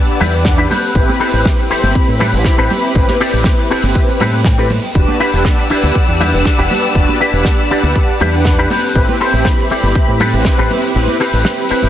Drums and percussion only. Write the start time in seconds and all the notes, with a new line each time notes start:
0.09 shaker
0.21 open hi-hat, high conga, low conga, shaker
0.33 shaker
0.45 kick, snare, shaker
0.70 open hi-hat, high conga, low conga, shaker
0.83 shaker
0.95 kick, shaker
1.09 high conga, shaker
1.20 open hi-hat, shaker
1.34 shaker
1.45 kick, snare, high conga, shaker
1.70 open hi-hat, shaker
1.84 high conga, shaker
1.95 kick, shaker
2.08 shaker
2.20 open hi-hat, high conga, low conga, shaker
2.34 shaker
2.44 kick, snare, shaker
2.70 open hi-hat, high conga, low conga, shaker
2.83 shaker
2.95 kick, shaker
3.07 snare, high conga, shaker
3.21 open hi-hat, shaker
3.33 shaker
3.44 kick, snare, high conga, shaker
3.71 open hi-hat, shaker
3.84 high conga, shaker
3.95 kick, shaker
4.09 shaker
4.20 open hi-hat, high conga, low conga, shaker
4.33 shaker
4.44 kick, snare, shaker
4.70 open hi-hat, high conga, low conga, shaker
4.84 shaker
4.95 kick, shaker
5.08 high conga, shaker
5.20 open hi-hat, shaker
5.33 shaker
5.45 kick, snare, high conga, shaker
5.70 open hi-hat, shaker
5.84 high conga, shaker
5.95 kick, shaker
6.08 shaker
6.21 open hi-hat, high conga, low conga, shaker
6.34 shaker
6.45 kick, snare, shaker
6.70 open hi-hat, high conga, low conga, shaker
6.84 shaker
6.95 kick, shaker
7.08 high conga, shaker
7.21 open hi-hat, shaker
7.33 shaker
7.45 kick, snare, high conga, shaker
7.70 open hi-hat, shaker
7.84 high conga, shaker
7.95 kick, shaker
8.08 shaker
8.20 open hi-hat, high conga, low conga, shaker
8.33 shaker
8.45 kick, snare, shaker
8.70 open hi-hat, high conga, low conga, shaker
8.83 shaker
8.96 kick, shaker
9.08 high conga, shaker
9.20 open hi-hat, shaker
9.33 shaker
9.45 kick, snare, high conga, shaker
9.70 open hi-hat, shaker
9.83 high conga, shaker
9.95 kick, shaker
10.08 shaker
10.20 open hi-hat, high conga, low conga, shaker
10.33 shaker
10.45 kick, snare, shaker
10.70 open hi-hat, high conga, low conga, shaker
10.83 shaker
10.96 shaker
11.08 high conga, shaker
11.20 open hi-hat, shaker
11.33 shaker
11.45 snare, high conga, shaker
11.58 shaker
11.69 open hi-hat, shaker
11.82 high conga, shaker